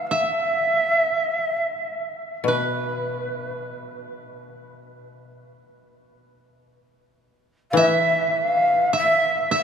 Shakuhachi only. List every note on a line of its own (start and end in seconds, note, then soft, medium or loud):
0.06 0.13 F5 medium
0.13 0.18 F5 medium
0.17 2.22 E5 medium
2.47 3.62 B4 medium
7.70 7.78 F5 medium
7.77 8.37 E5 loud
8.36 8.94 F5 medium
8.96 9.49 E5 loud
9.53 9.63 E5 loud